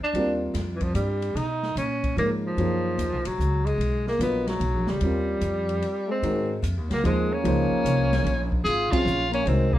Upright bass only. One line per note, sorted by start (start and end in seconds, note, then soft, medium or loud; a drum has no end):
0.13 0.53 D#2 medium
0.54 0.94 F2 medium
0.94 1.34 G2 medium
1.35 1.75 B2 medium
1.76 2.16 A#2 medium
2.16 2.56 G#2 medium
2.57 2.97 F#2 medium
2.98 3.12 D#2 medium
3.12 3.25 B1 soft
3.25 3.38 A#1 medium
3.38 3.77 C#2 medium
3.78 4.18 B1 medium
4.19 4.59 A#1 medium
4.60 4.74 B1 medium
4.74 4.86 A#1 medium
4.87 5.00 F#1 medium
5.00 5.40 D#2 medium
5.41 5.81 F2 medium
6.22 6.62 G#2 medium
6.62 6.77 F2 medium
6.77 6.90 D#2 medium
6.90 7.03 C#2 medium
7.04 7.43 D#2 medium
7.44 7.69 C#2 medium
7.71 muted upright bass stroke soft
7.84 8.23 C2 medium
8.24 8.64 A#1 medium
8.64 8.90 G#1 medium
8.92 muted upright bass stroke soft
9.05 9.45 A#1 medium
9.46 9.79 C2 medium